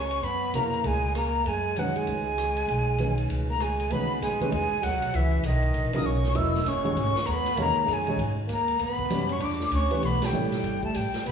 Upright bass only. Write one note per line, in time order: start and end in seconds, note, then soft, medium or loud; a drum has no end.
0.00 0.20 C#2 medium
0.22 0.51 F#2 medium
0.53 0.82 F2 medium
0.84 1.43 C#2 medium
1.46 2.04 F#2 medium
2.08 2.66 C#2 medium
2.68 3.27 B1 medium
3.29 3.87 C#2 medium
3.91 4.21 C#3 medium
4.21 4.39 F#2 medium
4.40 muted upright bass stroke soft
4.52 4.70 E2 medium
4.71 muted upright bass stroke soft
4.83 4.93 D#2 medium
4.93 5.03 C#2 medium
5.03 5.13 B1 medium
5.14 5.42 C#2 medium
5.43 5.73 B1 medium
5.74 6.04 A#1 medium
6.05 6.35 B1 medium
6.36 6.65 E1 medium
6.65 6.96 F#1 medium
6.96 7.14 G#1 medium
7.15 muted upright bass stroke soft
7.27 7.56 D#2 medium
7.56 7.75 E2 medium
7.77 muted upright bass stroke soft
7.87 8.16 F#2 loud
8.17 8.48 G#2 medium
8.49 8.79 D#2 medium
8.79 9.09 E2 medium
9.10 9.40 F#2 medium
9.40 9.70 E2 medium
9.71 10.02 D2 medium
10.02 10.32 B1 medium
10.33 10.62 A1 medium
10.63 10.94 G1 medium
10.95 11.13 A1 medium
11.15 muted upright bass stroke soft
11.25 11.32 B1 medium